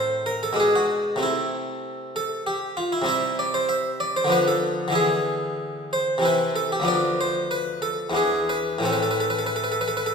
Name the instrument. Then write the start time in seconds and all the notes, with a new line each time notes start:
harpsichord
Already playing: A2 A3 C4 E4 C5
0.26 A#4
0.43 A4
0.53 B2 G#3 D4
0.60 G#4
0.76 F#4
1.16 C3 A3 C4
1.23 E4
2.16 A4
2.47 G4
2.77 F4
2.92 E4
3.02 C3 G3 C4
3.06 E4 E5
3.39 D5
3.54 C5
3.69 E5
4.00 D5
4.17 C5
4.24 D3 F3 B3
4.30 D4 B4
4.48 A4
4.88 D3 E3 B3
4.92 E4 G#4
5.93 C5
6.18 C3 E3 C4
6.23 E4 B4
6.56 A4
6.72 G4
6.80 D2 F3 B3
6.85 D4 D5
7.21 C5
7.51 B4
7.82 A4
8.10 E2 E3 B3
8.14 D4 G#4
8.49 B4
8.79 A2 E3 A3
8.83 C4 A4
8.93 B4
9.03 A4
9.11 B4
9.20 A4
9.30 B4
9.39 A4
9.46 B4
9.56 A4
9.64 B4
9.72 A4
9.81 B4
9.88 A4
9.97 B4
10.06 A4